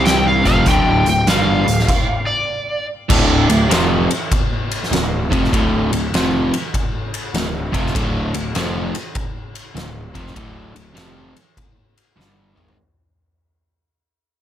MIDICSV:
0, 0, Header, 1, 5, 480
1, 0, Start_track
1, 0, Key_signature, -1, "minor"
1, 0, Tempo, 605449
1, 528, Time_signature, 4, 2, 24, 8
1, 11428, End_track
2, 0, Start_track
2, 0, Title_t, "Electric slide guitar"
2, 0, Program_c, 0, 29
2, 42, Note_on_c, 0, 79, 85
2, 200, Note_off_c, 0, 79, 0
2, 219, Note_on_c, 0, 77, 86
2, 364, Note_off_c, 0, 77, 0
2, 373, Note_on_c, 0, 77, 83
2, 526, Note_off_c, 0, 77, 0
2, 543, Note_on_c, 0, 79, 88
2, 841, Note_off_c, 0, 79, 0
2, 869, Note_on_c, 0, 79, 76
2, 1015, Note_off_c, 0, 79, 0
2, 1019, Note_on_c, 0, 77, 84
2, 1786, Note_off_c, 0, 77, 0
2, 1796, Note_on_c, 0, 74, 81
2, 2268, Note_off_c, 0, 74, 0
2, 11428, End_track
3, 0, Start_track
3, 0, Title_t, "Overdriven electric guitar"
3, 0, Program_c, 1, 29
3, 0, Note_on_c, 1, 48, 96
3, 0, Note_on_c, 1, 55, 101
3, 0, Note_on_c, 1, 60, 93
3, 348, Note_off_c, 1, 48, 0
3, 352, Note_off_c, 1, 55, 0
3, 353, Note_off_c, 1, 60, 0
3, 355, Note_on_c, 1, 41, 86
3, 362, Note_on_c, 1, 48, 99
3, 366, Note_on_c, 1, 53, 97
3, 520, Note_off_c, 1, 41, 0
3, 524, Note_off_c, 1, 48, 0
3, 526, Note_off_c, 1, 53, 0
3, 535, Note_on_c, 1, 38, 71
3, 540, Note_on_c, 1, 45, 74
3, 543, Note_on_c, 1, 50, 89
3, 837, Note_off_c, 1, 38, 0
3, 839, Note_off_c, 1, 45, 0
3, 841, Note_off_c, 1, 50, 0
3, 851, Note_on_c, 1, 38, 63
3, 855, Note_on_c, 1, 45, 60
3, 980, Note_off_c, 1, 38, 0
3, 983, Note_off_c, 1, 45, 0
3, 1009, Note_on_c, 1, 43, 102
3, 1015, Note_on_c, 1, 50, 93
3, 1018, Note_on_c, 1, 55, 99
3, 1313, Note_off_c, 1, 43, 0
3, 1316, Note_off_c, 1, 50, 0
3, 1316, Note_on_c, 1, 38, 53
3, 1319, Note_off_c, 1, 55, 0
3, 1319, Note_on_c, 1, 45, 67
3, 1454, Note_off_c, 1, 38, 0
3, 1455, Note_off_c, 1, 45, 0
3, 2451, Note_on_c, 1, 38, 82
3, 2455, Note_on_c, 1, 45, 85
3, 2463, Note_on_c, 1, 50, 75
3, 2757, Note_off_c, 1, 38, 0
3, 2759, Note_off_c, 1, 45, 0
3, 2763, Note_off_c, 1, 50, 0
3, 2767, Note_on_c, 1, 38, 62
3, 2770, Note_on_c, 1, 45, 73
3, 2901, Note_off_c, 1, 38, 0
3, 2902, Note_off_c, 1, 45, 0
3, 2931, Note_on_c, 1, 41, 107
3, 2936, Note_on_c, 1, 48, 85
3, 2939, Note_on_c, 1, 53, 104
3, 3237, Note_off_c, 1, 41, 0
3, 3240, Note_off_c, 1, 48, 0
3, 3241, Note_off_c, 1, 53, 0
3, 3904, Note_on_c, 1, 38, 72
3, 3904, Note_on_c, 1, 45, 69
3, 4150, Note_off_c, 1, 38, 0
3, 4151, Note_off_c, 1, 45, 0
3, 4213, Note_on_c, 1, 41, 109
3, 4219, Note_on_c, 1, 48, 109
3, 4221, Note_on_c, 1, 53, 106
3, 4373, Note_off_c, 1, 41, 0
3, 4376, Note_off_c, 1, 48, 0
3, 4377, Note_off_c, 1, 53, 0
3, 4379, Note_on_c, 1, 38, 84
3, 4383, Note_on_c, 1, 45, 80
3, 4389, Note_on_c, 1, 50, 85
3, 4681, Note_off_c, 1, 38, 0
3, 4683, Note_off_c, 1, 45, 0
3, 4686, Note_off_c, 1, 50, 0
3, 4695, Note_on_c, 1, 38, 67
3, 4703, Note_on_c, 1, 45, 74
3, 4825, Note_off_c, 1, 38, 0
3, 4829, Note_off_c, 1, 45, 0
3, 4870, Note_on_c, 1, 41, 102
3, 4876, Note_on_c, 1, 48, 104
3, 4878, Note_on_c, 1, 53, 106
3, 5167, Note_off_c, 1, 41, 0
3, 5170, Note_off_c, 1, 48, 0
3, 5171, Note_off_c, 1, 53, 0
3, 5824, Note_on_c, 1, 38, 65
3, 5827, Note_on_c, 1, 45, 74
3, 6070, Note_off_c, 1, 38, 0
3, 6072, Note_off_c, 1, 45, 0
3, 6123, Note_on_c, 1, 41, 94
3, 6133, Note_on_c, 1, 48, 105
3, 6138, Note_on_c, 1, 53, 106
3, 6287, Note_off_c, 1, 41, 0
3, 6292, Note_off_c, 1, 48, 0
3, 6294, Note_off_c, 1, 53, 0
3, 6302, Note_on_c, 1, 38, 89
3, 6305, Note_on_c, 1, 45, 96
3, 6308, Note_on_c, 1, 50, 92
3, 6602, Note_off_c, 1, 38, 0
3, 6603, Note_off_c, 1, 45, 0
3, 6605, Note_off_c, 1, 50, 0
3, 6616, Note_on_c, 1, 38, 67
3, 6617, Note_on_c, 1, 45, 70
3, 6744, Note_off_c, 1, 38, 0
3, 6745, Note_off_c, 1, 45, 0
3, 6778, Note_on_c, 1, 41, 93
3, 6783, Note_on_c, 1, 48, 114
3, 6787, Note_on_c, 1, 53, 117
3, 7079, Note_off_c, 1, 41, 0
3, 7082, Note_off_c, 1, 48, 0
3, 7084, Note_off_c, 1, 53, 0
3, 7732, Note_on_c, 1, 38, 69
3, 7737, Note_on_c, 1, 45, 80
3, 7983, Note_off_c, 1, 38, 0
3, 7985, Note_off_c, 1, 45, 0
3, 8039, Note_on_c, 1, 41, 109
3, 8045, Note_on_c, 1, 48, 111
3, 8046, Note_on_c, 1, 53, 106
3, 8202, Note_off_c, 1, 41, 0
3, 8205, Note_on_c, 1, 38, 74
3, 8206, Note_off_c, 1, 48, 0
3, 8207, Note_off_c, 1, 53, 0
3, 8209, Note_on_c, 1, 45, 87
3, 8211, Note_on_c, 1, 50, 91
3, 8502, Note_off_c, 1, 38, 0
3, 8508, Note_off_c, 1, 45, 0
3, 8512, Note_on_c, 1, 38, 64
3, 8515, Note_off_c, 1, 50, 0
3, 8517, Note_on_c, 1, 45, 71
3, 8651, Note_off_c, 1, 38, 0
3, 8653, Note_off_c, 1, 45, 0
3, 8677, Note_on_c, 1, 41, 88
3, 8680, Note_on_c, 1, 48, 103
3, 8687, Note_on_c, 1, 53, 120
3, 8987, Note_off_c, 1, 41, 0
3, 8989, Note_off_c, 1, 48, 0
3, 8992, Note_off_c, 1, 53, 0
3, 9643, Note_on_c, 1, 43, 88
3, 9646, Note_on_c, 1, 50, 106
3, 9651, Note_on_c, 1, 55, 107
3, 9947, Note_off_c, 1, 43, 0
3, 9950, Note_off_c, 1, 50, 0
3, 9950, Note_on_c, 1, 44, 114
3, 9953, Note_off_c, 1, 55, 0
3, 9954, Note_on_c, 1, 51, 105
3, 9957, Note_on_c, 1, 56, 119
3, 10116, Note_off_c, 1, 44, 0
3, 10118, Note_off_c, 1, 51, 0
3, 10120, Note_off_c, 1, 56, 0
3, 11428, End_track
4, 0, Start_track
4, 0, Title_t, "Picked electric bass"
4, 0, Program_c, 2, 34
4, 0, Note_on_c, 2, 36, 85
4, 330, Note_off_c, 2, 36, 0
4, 362, Note_on_c, 2, 29, 79
4, 517, Note_off_c, 2, 29, 0
4, 525, Note_on_c, 2, 26, 79
4, 819, Note_off_c, 2, 26, 0
4, 840, Note_on_c, 2, 26, 74
4, 997, Note_off_c, 2, 26, 0
4, 1002, Note_on_c, 2, 31, 96
4, 1299, Note_off_c, 2, 31, 0
4, 1325, Note_on_c, 2, 26, 70
4, 1480, Note_off_c, 2, 26, 0
4, 2456, Note_on_c, 2, 26, 93
4, 2747, Note_off_c, 2, 26, 0
4, 2769, Note_on_c, 2, 26, 80
4, 2924, Note_off_c, 2, 26, 0
4, 2932, Note_on_c, 2, 29, 92
4, 3225, Note_off_c, 2, 29, 0
4, 3894, Note_on_c, 2, 26, 86
4, 4186, Note_off_c, 2, 26, 0
4, 4215, Note_on_c, 2, 29, 86
4, 4367, Note_off_c, 2, 29, 0
4, 4382, Note_on_c, 2, 26, 102
4, 4670, Note_off_c, 2, 26, 0
4, 4693, Note_on_c, 2, 26, 79
4, 4846, Note_off_c, 2, 26, 0
4, 4854, Note_on_c, 2, 29, 99
4, 5146, Note_off_c, 2, 29, 0
4, 5819, Note_on_c, 2, 26, 80
4, 6108, Note_off_c, 2, 26, 0
4, 6133, Note_on_c, 2, 29, 81
4, 6285, Note_off_c, 2, 29, 0
4, 6303, Note_on_c, 2, 26, 97
4, 6590, Note_off_c, 2, 26, 0
4, 6615, Note_on_c, 2, 26, 76
4, 6766, Note_off_c, 2, 26, 0
4, 6780, Note_on_c, 2, 29, 95
4, 7068, Note_off_c, 2, 29, 0
4, 7732, Note_on_c, 2, 26, 72
4, 8023, Note_off_c, 2, 26, 0
4, 8047, Note_on_c, 2, 29, 83
4, 8201, Note_off_c, 2, 29, 0
4, 8215, Note_on_c, 2, 26, 97
4, 8504, Note_off_c, 2, 26, 0
4, 8520, Note_on_c, 2, 26, 76
4, 8676, Note_off_c, 2, 26, 0
4, 8690, Note_on_c, 2, 29, 108
4, 8981, Note_off_c, 2, 29, 0
4, 9645, Note_on_c, 2, 31, 94
4, 9937, Note_off_c, 2, 31, 0
4, 9958, Note_on_c, 2, 32, 90
4, 10113, Note_off_c, 2, 32, 0
4, 11428, End_track
5, 0, Start_track
5, 0, Title_t, "Drums"
5, 44, Note_on_c, 9, 42, 67
5, 53, Note_on_c, 9, 38, 100
5, 123, Note_off_c, 9, 42, 0
5, 132, Note_off_c, 9, 38, 0
5, 360, Note_on_c, 9, 42, 52
5, 362, Note_on_c, 9, 36, 65
5, 440, Note_off_c, 9, 42, 0
5, 441, Note_off_c, 9, 36, 0
5, 523, Note_on_c, 9, 42, 83
5, 528, Note_on_c, 9, 36, 108
5, 602, Note_off_c, 9, 42, 0
5, 607, Note_off_c, 9, 36, 0
5, 841, Note_on_c, 9, 42, 54
5, 920, Note_off_c, 9, 42, 0
5, 1008, Note_on_c, 9, 42, 79
5, 1017, Note_on_c, 9, 38, 93
5, 1087, Note_off_c, 9, 42, 0
5, 1097, Note_off_c, 9, 38, 0
5, 1330, Note_on_c, 9, 42, 55
5, 1409, Note_off_c, 9, 42, 0
5, 1418, Note_on_c, 9, 38, 29
5, 1493, Note_on_c, 9, 49, 76
5, 1494, Note_on_c, 9, 36, 94
5, 1498, Note_off_c, 9, 38, 0
5, 1572, Note_off_c, 9, 49, 0
5, 1573, Note_off_c, 9, 36, 0
5, 2456, Note_on_c, 9, 49, 113
5, 2458, Note_on_c, 9, 36, 119
5, 2535, Note_off_c, 9, 49, 0
5, 2537, Note_off_c, 9, 36, 0
5, 2772, Note_on_c, 9, 51, 73
5, 2851, Note_off_c, 9, 51, 0
5, 2943, Note_on_c, 9, 51, 92
5, 2952, Note_on_c, 9, 38, 114
5, 3022, Note_off_c, 9, 51, 0
5, 3032, Note_off_c, 9, 38, 0
5, 3256, Note_on_c, 9, 51, 67
5, 3335, Note_off_c, 9, 51, 0
5, 3421, Note_on_c, 9, 51, 91
5, 3422, Note_on_c, 9, 36, 104
5, 3500, Note_off_c, 9, 51, 0
5, 3501, Note_off_c, 9, 36, 0
5, 3738, Note_on_c, 9, 51, 61
5, 3817, Note_off_c, 9, 51, 0
5, 3834, Note_on_c, 9, 38, 30
5, 3907, Note_on_c, 9, 51, 85
5, 3913, Note_off_c, 9, 38, 0
5, 3917, Note_on_c, 9, 38, 103
5, 3987, Note_off_c, 9, 51, 0
5, 3996, Note_off_c, 9, 38, 0
5, 4217, Note_on_c, 9, 36, 97
5, 4223, Note_on_c, 9, 51, 65
5, 4296, Note_off_c, 9, 36, 0
5, 4302, Note_off_c, 9, 51, 0
5, 4315, Note_on_c, 9, 38, 30
5, 4385, Note_on_c, 9, 36, 109
5, 4389, Note_on_c, 9, 51, 96
5, 4394, Note_off_c, 9, 38, 0
5, 4464, Note_off_c, 9, 36, 0
5, 4469, Note_off_c, 9, 51, 0
5, 4699, Note_on_c, 9, 51, 68
5, 4778, Note_off_c, 9, 51, 0
5, 4867, Note_on_c, 9, 51, 89
5, 4877, Note_on_c, 9, 38, 118
5, 4946, Note_off_c, 9, 51, 0
5, 4956, Note_off_c, 9, 38, 0
5, 5182, Note_on_c, 9, 51, 75
5, 5261, Note_off_c, 9, 51, 0
5, 5344, Note_on_c, 9, 36, 101
5, 5345, Note_on_c, 9, 51, 98
5, 5423, Note_off_c, 9, 36, 0
5, 5425, Note_off_c, 9, 51, 0
5, 5659, Note_on_c, 9, 51, 75
5, 5739, Note_off_c, 9, 51, 0
5, 5823, Note_on_c, 9, 51, 96
5, 5832, Note_on_c, 9, 38, 115
5, 5902, Note_off_c, 9, 51, 0
5, 5912, Note_off_c, 9, 38, 0
5, 6137, Note_on_c, 9, 36, 98
5, 6138, Note_on_c, 9, 51, 70
5, 6216, Note_off_c, 9, 36, 0
5, 6218, Note_off_c, 9, 51, 0
5, 6236, Note_on_c, 9, 38, 32
5, 6303, Note_on_c, 9, 36, 127
5, 6308, Note_on_c, 9, 51, 119
5, 6315, Note_off_c, 9, 38, 0
5, 6383, Note_off_c, 9, 36, 0
5, 6387, Note_off_c, 9, 51, 0
5, 6615, Note_on_c, 9, 51, 77
5, 6694, Note_off_c, 9, 51, 0
5, 6778, Note_on_c, 9, 51, 99
5, 6788, Note_on_c, 9, 38, 126
5, 6857, Note_off_c, 9, 51, 0
5, 6867, Note_off_c, 9, 38, 0
5, 7093, Note_on_c, 9, 51, 76
5, 7173, Note_off_c, 9, 51, 0
5, 7254, Note_on_c, 9, 51, 93
5, 7258, Note_on_c, 9, 36, 114
5, 7334, Note_off_c, 9, 51, 0
5, 7337, Note_off_c, 9, 36, 0
5, 7574, Note_on_c, 9, 51, 70
5, 7653, Note_off_c, 9, 51, 0
5, 7742, Note_on_c, 9, 51, 78
5, 7752, Note_on_c, 9, 38, 102
5, 7822, Note_off_c, 9, 51, 0
5, 7831, Note_off_c, 9, 38, 0
5, 8048, Note_on_c, 9, 51, 62
5, 8050, Note_on_c, 9, 36, 89
5, 8128, Note_off_c, 9, 51, 0
5, 8129, Note_off_c, 9, 36, 0
5, 8143, Note_on_c, 9, 38, 31
5, 8215, Note_on_c, 9, 36, 116
5, 8215, Note_on_c, 9, 51, 107
5, 8222, Note_off_c, 9, 38, 0
5, 8294, Note_off_c, 9, 36, 0
5, 8294, Note_off_c, 9, 51, 0
5, 8529, Note_on_c, 9, 51, 69
5, 8608, Note_off_c, 9, 51, 0
5, 8694, Note_on_c, 9, 51, 108
5, 8704, Note_on_c, 9, 38, 120
5, 8774, Note_off_c, 9, 51, 0
5, 8783, Note_off_c, 9, 38, 0
5, 9010, Note_on_c, 9, 51, 72
5, 9089, Note_off_c, 9, 51, 0
5, 9174, Note_on_c, 9, 36, 100
5, 9175, Note_on_c, 9, 51, 95
5, 9253, Note_off_c, 9, 36, 0
5, 9255, Note_off_c, 9, 51, 0
5, 9494, Note_on_c, 9, 51, 72
5, 9573, Note_off_c, 9, 51, 0
5, 9671, Note_on_c, 9, 38, 59
5, 9750, Note_off_c, 9, 38, 0
5, 9969, Note_on_c, 9, 45, 81
5, 10049, Note_off_c, 9, 45, 0
5, 10057, Note_on_c, 9, 43, 95
5, 10136, Note_off_c, 9, 43, 0
5, 11428, End_track
0, 0, End_of_file